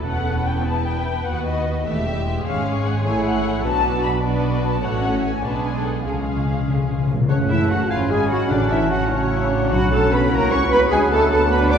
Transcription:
Already playing: A4
0.04 E1 E2 B3 C#4 B4 F#5
0.45 G5
0.65 B3 E4 A5
0.85 G5
1.25 D#2 B3 F#4 F#5
1.45 D#5
1.86 E1 E2 A3 G4 E5
2.05 G3
2.26 G#3
2.45 G#1 G#2 C#4 G#4 C#5 F5
2.86 F#5
3.05 A1 A2 A3 E4 C#5 G#5
3.25 F#5
3.64 B1 B2 F#3 D4 F#4 B4 A5
4.04 B5
4.23 B3 D4 F#4 B4 D5
4.63 A5
4.84 A1 A2 A3 C#4 F#4 C#5 F#5
5.24 G#5
5.43 B1 B2 G#3 D4 G#4 B4 A5
5.65 G#5
5.75 A4
5.85 F#5
6.05 C#2 C#3 G#3 C#4 G#4 F5
6.13 C#3
6.21 C#3
6.29 C#3
6.37 C#3
6.45 C#3
6.60 C#3
6.67 C#3 D3
6.76 C#3
6.83 C#3
6.89 C#3
6.98 C#3
7.06 B2 C#3
7.14 C#3
7.21 C#3
7.28 F#1 C#3 A3 C#4 C#5 F#5 A5
7.49 E3 E4 E5
7.69 F#3 F#4 F#5
7.90 G#1 F3 C#4 F4 F5 G#5 B5
8.10 G#3 G#4 G#5
8.30 F#3 F#4 F#5
8.50 A1 A2 D3 F#3 D4 F#4 D5 F#5 A5
8.71 E3 E4 E5
8.91 F#3 F#4 F#5
9.11 C#3 C#4 F#4 C#5
9.31 E4
9.52 D4
9.72 B1 F#3 C#4 D4 F#4 F#5 B5
9.91 A3 A4 A5
10.12 B3 B4 B5
10.32 C#2 A#3 E4 A#4 A#5 C#6
10.51 C#4 C#5 C#6
10.71 B3 B4 B5
10.91 D2 F#3 G#3 B3 D4 G#4 F#5 G#5 B5
11.11 A3 A4 A5
11.31 A3 A4 A5
11.51 B3 D4 B4 B5
11.71 D4 D5 D6

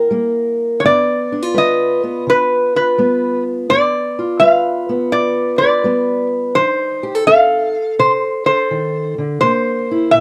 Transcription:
Already playing: A#3 E4 A#4 G5
0.11 G3 A#3
0.80 G2 C#5
0.84 B3 D5
1.32 D4
1.42 F4
1.54 G3 B4 D#5
2.04 B3
2.27 D3 B4
2.76 F4 B4
2.98 G3 B3
3.69 G2 B3 D5
4.19 F4
4.40 G3 B4 F5
4.89 B3
5.12 D3 D5
5.58 B4 D5
5.84 G3 B3
6.55 F3 D#4 C5
7.03 G4
7.15 A4
7.27 C4 A4 F5
7.99 C3 C5
8.46 A4 C5
8.71 D#3
9.18 D3
9.41 C3 A#3 C5
9.91 E4
10.11 A#2 E5

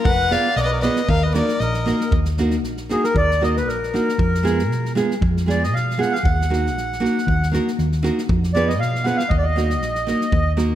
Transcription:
0.05 F1 B4 F#5, kick
0.30 B3 F4 G#4 B4 D5 F5, snare
0.56 B1 A#4 D5 D#5, snare
0.64 B4 D#5
0.70 A#4 D5
0.81 B3 F4 G#4 B4 D#5, snare
0.96 snare
1.09 D#2 A#4 F5, kick
1.23 B4 D#5
1.34 A#3 D#4 F#4 A#4 D5, snare
1.48 snare
1.60 A#1 A#4 D#5, snare
1.74 snare
1.86 A#3 D#4 F#4 A#4, snare
2.01 snare
2.11 D#2, kick
2.25 snare
2.37 A#3 D#4 F#4 A#4, snare
2.50 snare
2.63 A#1, snare
2.77 snare
2.89 A#3 D#4 F#4 G#4 A#4, snare
3.04 A#4, snare
3.14 D#2 D5, kick
3.31 snare
3.41 A#3 D#4 F#4 A#4 D#5, snare
3.57 B4, snare
3.66 A#1 A#4, snare
3.83 snare
3.94 A#3 D#4 F#4 A#4, snare
4.09 snare
4.18 F2, kick
4.35 snare
4.43 G#3 B3 F4 G#4, snare
4.59 snare
4.69 B2, snare
4.85 snare
4.95 G#3 B3 F4 G#4, snare
5.11 snare
5.21 F2, kick
5.37 snare
5.46 G#3 B3 F4 G#4 D5, snare
5.63 D#5, snare
5.72 B2 F5, snare
5.91 snare
5.97 G#3 B3 F4 G#4 F#5
6.02 snare
6.12 F5, snare
6.23 D#2 F#5, kick
6.41 snare
6.50 A#3 D#4 F#4 A#4, snare
6.66 snare
6.74 A#1, snare
6.92 snare
7.00 A#3 D#4 F#4 A#4
7.05 snare
7.18 snare
7.27 D#2, kick
7.43 snare
7.51 A#3 D#4 F#4 A#4, snare
7.68 snare
7.78 D#2, snare
7.92 snare
8.03 A#3 D#4 F#4 A#4, snare
8.18 snare
8.29 F2, kick
8.43 snare
8.53 B3 F4 G#4 B4 D5, snare
8.68 D#5, snare
8.79 B2 F5, snare
8.95 snare
9.04 B3 F4 G#4 B4 F#5, snare
9.17 F5, snare
9.29 D#2 D#5, kick
9.38 D5
9.42 D#5
9.56 A#3 D#4 F#4 A#4, snare
9.70 snare
9.81 A#1, snare
9.95 snare
10.07 A#3 D#4 F#4 A#4, snare
10.21 snare
10.32 D#2, kick
10.57 A#3 D#4 F#4 A#4, snare

